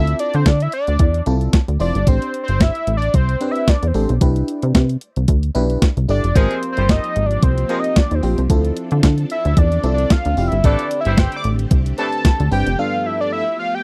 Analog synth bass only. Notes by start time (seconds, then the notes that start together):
Already playing: D2
0.35 D3
0.46 D3
0.88 D2
1.00 E2
1.27 C2
1.68 D2
1.80 F1
1.95 G1
2.07 A1
2.49 G1
2.87 A1
3.14 C2
3.83 E2
3.95 A1
4.10 B1
4.21 C2
4.63 C3
4.75 C3
5.17 C2
5.28 D2
5.55 B1
5.97 C2
6.09 G1
6.24 F1
6.36 G#1
6.78 G1
7.16 G#1
7.43 C2
8.12 D#2
8.23 A#1
8.38 C2
8.50 D2
8.92 D3
9.03 D3
9.45 D2
9.57 E2
9.84 C2
10.26 D2
10.37 F1
10.52 G1
10.64 A1
11.06 G1
11.44 A1
11.71 C2
12.40 D2
12.51 G1
12.67 F1